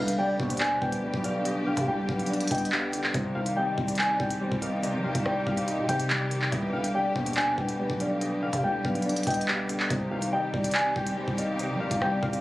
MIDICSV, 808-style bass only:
0, 0, Header, 1, 2, 480
1, 0, Start_track
1, 0, Key_signature, -3, "minor"
1, 0, Tempo, 422535
1, 1651, Time_signature, 4, 2, 24, 8
1, 14095, End_track
2, 0, Start_track
2, 0, Title_t, "808-style bass"
2, 0, Program_c, 0, 38
2, 0, Note_on_c, 0, 36, 102
2, 431, Note_off_c, 0, 36, 0
2, 451, Note_on_c, 0, 39, 106
2, 911, Note_off_c, 0, 39, 0
2, 929, Note_on_c, 0, 36, 103
2, 1170, Note_on_c, 0, 38, 96
2, 1187, Note_off_c, 0, 36, 0
2, 1284, Note_off_c, 0, 38, 0
2, 1291, Note_on_c, 0, 35, 101
2, 1982, Note_off_c, 0, 35, 0
2, 2010, Note_on_c, 0, 48, 106
2, 2126, Note_off_c, 0, 48, 0
2, 2131, Note_on_c, 0, 36, 111
2, 2361, Note_off_c, 0, 36, 0
2, 2371, Note_on_c, 0, 35, 109
2, 2832, Note_off_c, 0, 35, 0
2, 2851, Note_on_c, 0, 36, 106
2, 3542, Note_off_c, 0, 36, 0
2, 3572, Note_on_c, 0, 36, 109
2, 3802, Note_off_c, 0, 36, 0
2, 3811, Note_on_c, 0, 36, 105
2, 4041, Note_off_c, 0, 36, 0
2, 4291, Note_on_c, 0, 36, 105
2, 4752, Note_off_c, 0, 36, 0
2, 4770, Note_on_c, 0, 36, 107
2, 5116, Note_off_c, 0, 36, 0
2, 5131, Note_on_c, 0, 36, 110
2, 5610, Note_on_c, 0, 55, 94
2, 5627, Note_off_c, 0, 36, 0
2, 5729, Note_on_c, 0, 36, 95
2, 5746, Note_off_c, 0, 55, 0
2, 5844, Note_off_c, 0, 36, 0
2, 5850, Note_on_c, 0, 36, 111
2, 5963, Note_off_c, 0, 36, 0
2, 5970, Note_on_c, 0, 36, 110
2, 6201, Note_off_c, 0, 36, 0
2, 6210, Note_on_c, 0, 36, 107
2, 6569, Note_on_c, 0, 48, 100
2, 6586, Note_off_c, 0, 36, 0
2, 6684, Note_off_c, 0, 48, 0
2, 6689, Note_on_c, 0, 48, 103
2, 7381, Note_off_c, 0, 48, 0
2, 7410, Note_on_c, 0, 36, 112
2, 7641, Note_off_c, 0, 36, 0
2, 7650, Note_on_c, 0, 36, 105
2, 8111, Note_off_c, 0, 36, 0
2, 8130, Note_on_c, 0, 39, 105
2, 8591, Note_off_c, 0, 39, 0
2, 8610, Note_on_c, 0, 36, 106
2, 8849, Note_on_c, 0, 38, 100
2, 8866, Note_off_c, 0, 36, 0
2, 8964, Note_off_c, 0, 38, 0
2, 8971, Note_on_c, 0, 35, 101
2, 9662, Note_off_c, 0, 35, 0
2, 9690, Note_on_c, 0, 48, 107
2, 9803, Note_off_c, 0, 48, 0
2, 9809, Note_on_c, 0, 36, 108
2, 10040, Note_off_c, 0, 36, 0
2, 10050, Note_on_c, 0, 35, 111
2, 10511, Note_off_c, 0, 35, 0
2, 10529, Note_on_c, 0, 36, 106
2, 11221, Note_off_c, 0, 36, 0
2, 11251, Note_on_c, 0, 36, 114
2, 11481, Note_off_c, 0, 36, 0
2, 11489, Note_on_c, 0, 36, 108
2, 11720, Note_off_c, 0, 36, 0
2, 11971, Note_on_c, 0, 36, 107
2, 12431, Note_off_c, 0, 36, 0
2, 12450, Note_on_c, 0, 36, 104
2, 12796, Note_off_c, 0, 36, 0
2, 12810, Note_on_c, 0, 36, 111
2, 13289, Note_on_c, 0, 55, 94
2, 13306, Note_off_c, 0, 36, 0
2, 13408, Note_on_c, 0, 36, 98
2, 13425, Note_off_c, 0, 55, 0
2, 13523, Note_off_c, 0, 36, 0
2, 13530, Note_on_c, 0, 36, 108
2, 13642, Note_off_c, 0, 36, 0
2, 13649, Note_on_c, 0, 36, 107
2, 13880, Note_off_c, 0, 36, 0
2, 13890, Note_on_c, 0, 36, 108
2, 14095, Note_off_c, 0, 36, 0
2, 14095, End_track
0, 0, End_of_file